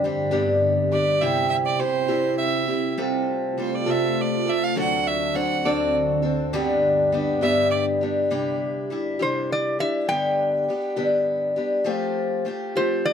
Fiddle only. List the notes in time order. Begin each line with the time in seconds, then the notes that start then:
0.92 D5
1.21 E5
1.49 E5
1.66 D5
1.80 C5
2.38 E5
3.60 C5
3.75 D5
3.91 E5
4.21 D5
4.50 E5
4.64 F5
4.79 F#5
5.07 E5
5.35 F#5
5.66 D5
7.42 E5
7.71 D5